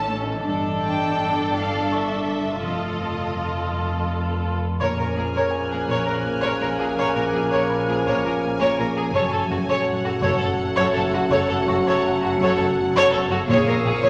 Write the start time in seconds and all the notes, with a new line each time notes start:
Already playing: A1 A2 C#4 A4 A5
0.09 A3
0.45 G1 G2 D4 A4
0.82 G2 G5
1.18 G2
1.54 G2 F5
1.91 G2 E5 C#6
2.27 G3
2.62 F1 F2 F4 A4 D#5
2.99 F2
3.36 F2
3.72 F2
4.09 F2
4.45 F3
4.80 A#1 A#2 F3 A#3 C#4 G#4 A#4 C#5 G#5 F6
4.99 A#2 A#4
5.16 A#1 A#2 G#4 A#4
5.35 A#2 A#4 C#5
5.51 A#2 G#5 F#6
5.71 A#2 G#4 A#4
5.88 A#1 A#2 A#4 C#5
6.06 A#2 A#4
6.27 A#2
6.42 A#2 A#4 C#5
6.61 A#1 A#2 A#3 A#4
6.79 A#2 G#4 A#4
6.97 A#1 A#2 A#4 C#5
7.15 A#2 A#4
7.33 A#1 A#2 G#4 A#4
7.52 A#2 A#4 C#5
7.69 A#2 B5
7.88 A#2 G#4 A#4
7.95 F6
8.05 A#1 A#2 A#4 C#5
8.24 A#2 A#4
8.42 A#2
8.60 A#2 A#4 C#5
8.77 A#1 A#2 A#3 A#4
8.96 A#2 G#4 A#4
9.13 F#1 F#2 F#3 A3 C#4 F#4 A4 C#5
9.32 F#2 A4
9.50 F#1 F#2 F#4 A4
9.68 F#2 A4 C#5
9.87 F#2 F#5
10.04 F#2 F#4 A4
10.22 F#1 F#2 A4 C#5
10.39 F#2 A4
10.58 F#2
10.76 F#2 A4 C#5
10.94 F#1 F#2 F#3 A4
11.14 F#2 F#4 A4
11.30 F#1 F#2 A4 C#5
11.49 F#2 A4
11.68 F#1 F#2 F#4 A4 C#5 C#6
11.86 F#2 A4 C#5
12.05 F#2
12.22 F#2 F#4 A4
12.40 F#1 F#2 A4 C#5
12.58 F#2 A4
12.76 F#2
12.94 F#2 A4 C#5
13.12 F#1 F#2 F#3 A4
13.30 F#2 F#4 A4
13.47 A#1 A#2 F3 A#3 C#4 G#4 C#5 F5 C#6 D#6 E6
13.67 A#2 G#4 A#4
13.84 A#1 A#2 G#4
14.03 A#2 G#4 C#5